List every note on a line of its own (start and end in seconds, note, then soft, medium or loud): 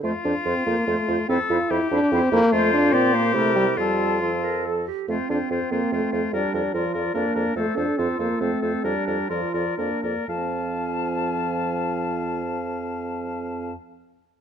0.03 0.13 F2 medium
0.03 0.13 A3 medium
0.03 0.13 F4 medium
0.03 1.26 F4 medium
0.03 0.10 C5 soft
0.24 0.34 F2 medium
0.24 0.34 D4 medium
0.24 0.34 F4 soft
0.24 0.30 C5 soft
0.45 0.55 F2 medium
0.45 0.66 C4 medium
0.45 0.55 F4 soft
0.45 0.52 C5 soft
0.66 0.76 F2 medium
0.66 0.87 A#3 medium
0.66 0.77 F4 soft
0.66 0.74 C5 soft
0.87 0.97 F2 medium
0.87 1.28 A3 medium
0.87 0.97 F4 soft
0.87 0.94 C5 soft
1.08 1.17 F2 medium
1.08 1.18 F4 medium
1.08 1.15 C5 medium
1.28 1.38 F2 medium
1.28 1.38 C4 medium
1.28 1.39 E4 medium
1.28 1.72 A4 medium
1.28 1.36 C5 medium
1.49 1.59 F2 medium
1.49 1.60 E4 medium
1.49 1.72 F4 medium
1.49 1.55 C5 medium
1.70 1.80 F2 medium
1.70 1.91 E4 medium
1.70 1.80 E4 medium
1.70 2.52 G4 medium
1.70 1.76 C5 medium
1.91 2.00 F2 medium
1.91 2.13 D4 medium
1.91 2.01 E4 medium
1.91 1.97 C5 medium
2.11 2.21 F2 medium
2.11 2.32 C4 medium
2.11 2.22 E4 medium
2.11 2.18 C5 medium
2.31 2.41 F2 medium
2.31 2.54 A#3 loud
2.31 2.41 E4 medium
2.31 2.39 C5 medium
2.52 2.94 F2 medium
2.52 2.72 A3 loud
2.52 2.94 F4 medium
2.52 2.91 F4 medium
2.52 2.95 C5 medium
2.73 2.94 D4 loud
2.93 3.36 A#2 medium
2.93 3.15 C4 medium
2.93 3.37 F4 medium
2.93 3.79 G4 medium
2.93 3.16 D5 medium
3.14 3.34 A#3 loud
3.14 3.35 C5 medium
3.35 3.76 C3 medium
3.35 3.55 A3 medium
3.35 3.78 E4 medium
3.35 3.77 A#4 medium
3.56 3.66 G3 medium
3.77 4.84 F2 medium
3.77 4.23 G3 medium
3.77 4.87 F4 medium
3.77 4.21 F4 soft
3.77 4.21 A4 medium
4.21 4.65 F3 medium
4.21 4.31 F4 medium
4.21 4.86 A4 soft
4.43 4.67 A#4 medium
4.66 4.87 A4 soft
4.87 5.08 G4 soft
5.08 5.18 F2 soft
5.08 5.18 A3 medium
5.08 6.29 C4 medium
5.08 5.29 F4 soft
5.08 5.29 C5 soft
5.29 5.39 F2 soft
5.29 5.39 D4 medium
5.29 5.50 F4 soft
5.29 5.50 C5 soft
5.50 5.59 F2 soft
5.50 5.72 C4 medium
5.50 5.71 F4 soft
5.50 5.71 C5 soft
5.71 5.80 F2 soft
5.71 5.94 A#3 medium
5.71 5.92 F4 soft
5.71 5.92 C5 soft
5.92 6.01 F2 soft
5.92 6.35 A3 medium
5.92 6.12 F4 soft
5.92 6.12 C5 soft
6.12 6.22 F2 soft
6.12 6.33 F4 soft
6.12 6.32 C5 soft
6.32 6.42 F2 soft
6.32 6.75 G3 medium
6.32 6.73 D4 soft
6.32 6.53 A#4 medium
6.32 6.53 D5 soft
6.54 6.63 F2 soft
6.54 6.74 A#4 soft
6.54 6.74 D5 soft
6.73 6.83 F2 soft
6.73 7.13 F3 medium
6.73 7.14 F4 soft
6.73 6.94 A#4 soft
6.73 6.94 D5 soft
6.94 7.03 F2 soft
6.94 7.14 A#4 soft
6.94 7.14 D5 soft
7.14 7.24 F2 soft
7.14 7.55 A#3 medium
7.14 7.55 D4 soft
7.14 7.35 A#4 soft
7.14 7.35 D5 soft
7.35 7.45 F2 soft
7.35 7.55 A#4 soft
7.35 7.54 D5 soft
7.55 7.65 F2 soft
7.55 7.78 A3 medium
7.55 8.00 A4 soft
7.55 7.76 A4 soft
7.55 7.76 C5 soft
7.76 7.86 F2 soft
7.76 7.99 D4 medium
7.76 7.97 A4 soft
7.76 7.97 C5 soft
7.98 8.08 F2 medium
7.98 8.19 C4 medium
7.98 8.42 F4 medium
7.98 8.19 A4 soft
7.98 8.18 C5 soft
8.19 8.29 F2 soft
8.19 8.42 A#3 medium
8.19 8.40 A4 soft
8.19 8.39 C5 soft
8.40 8.50 F2 soft
8.40 8.86 A3 medium
8.40 8.86 C4 soft
8.40 8.62 A4 soft
8.40 8.61 C5 soft
8.61 8.72 F2 soft
8.61 8.84 A4 soft
8.61 8.83 C5 soft
8.84 8.94 F2 soft
8.84 9.31 G3 medium
8.84 9.31 D4 soft
8.84 9.06 A#4 soft
8.84 9.06 D5 soft
9.07 9.17 F2 soft
9.07 9.30 A#4 soft
9.07 9.29 D5 soft
9.29 9.40 F2 soft
9.29 9.77 F3 soft
9.29 9.80 F4 soft
9.29 9.53 A#4 soft
9.29 9.52 D5 soft
9.52 9.65 F2 soft
9.52 9.77 A#4 soft
9.52 9.77 D5 soft
9.77 9.90 F2 soft
9.77 10.28 A#3 soft
9.77 10.04 D4 soft
9.77 10.02 A#4 soft
9.77 10.02 D5 soft
10.03 10.15 F2 soft
10.03 10.29 A#4 soft
10.03 10.27 D5 soft
10.28 13.73 F2 soft
10.28 13.73 F3 soft
10.28 13.73 C4 soft
10.28 13.73 F5 soft
10.28 13.71 A5 soft